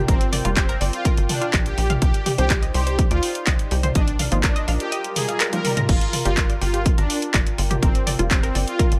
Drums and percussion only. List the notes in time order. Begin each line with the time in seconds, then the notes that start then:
0.08 kick, closed hi-hat
0.21 closed hi-hat
0.33 open hi-hat, mid tom
0.45 closed hi-hat
0.57 kick, clap, closed hi-hat
0.69 closed hi-hat
0.81 open hi-hat
0.93 closed hi-hat
1.05 kick, closed hi-hat
1.17 closed hi-hat
1.29 open hi-hat, mid tom
1.42 closed hi-hat
1.53 kick, clap, closed hi-hat
1.66 closed hi-hat
1.78 open hi-hat
1.90 closed hi-hat, mid tom
2.02 kick, closed hi-hat
2.14 closed hi-hat
2.26 open hi-hat, mid tom
2.38 closed hi-hat
2.50 kick, clap, closed hi-hat
2.63 closed hi-hat
2.74 open hi-hat
2.87 closed hi-hat
2.99 kick, closed hi-hat
3.11 closed hi-hat
3.23 open hi-hat
3.35 closed hi-hat
3.47 kick, clap, closed hi-hat
3.59 closed hi-hat
3.71 open hi-hat
3.83 closed hi-hat, mid tom
3.95 kick, closed hi-hat
4.08 closed hi-hat
4.19 open hi-hat, mid tom
4.32 closed hi-hat
4.44 kick, clap, closed hi-hat
4.56 closed hi-hat
4.68 open hi-hat
4.80 closed hi-hat
4.92 closed hi-hat
5.04 closed hi-hat
5.16 open hi-hat, mid tom
5.29 closed hi-hat
5.40 clap, closed hi-hat
5.53 closed hi-hat, high tom
5.65 open hi-hat, mid tom
5.77 closed hi-hat, mid tom
5.89 kick, closed hi-hat, crash
6.01 closed hi-hat
6.13 open hi-hat, mid tom
6.25 closed hi-hat
6.37 kick, clap, closed hi-hat
6.50 closed hi-hat
6.62 open hi-hat
6.74 closed hi-hat
6.86 kick, closed hi-hat
6.98 closed hi-hat
7.10 open hi-hat
7.22 closed hi-hat
7.34 kick, clap, closed hi-hat
7.47 closed hi-hat
7.58 open hi-hat
7.71 closed hi-hat, mid tom
7.83 kick, closed hi-hat
7.95 closed hi-hat
8.07 open hi-hat, mid tom
8.19 closed hi-hat
8.31 kick, clap, closed hi-hat
8.43 closed hi-hat
8.55 open hi-hat
8.68 closed hi-hat
8.79 kick, closed hi-hat
8.92 closed hi-hat